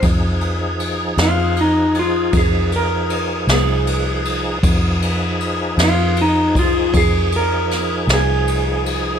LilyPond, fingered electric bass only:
\new Staff \with { instrumentName = "Fingered electric bass" } { \clef bass \time 12/8 \key f \minor \tempo 4. = 52 f,4. f,4. f,4. c,4. | f,4. f,4. f,4. c,4. | }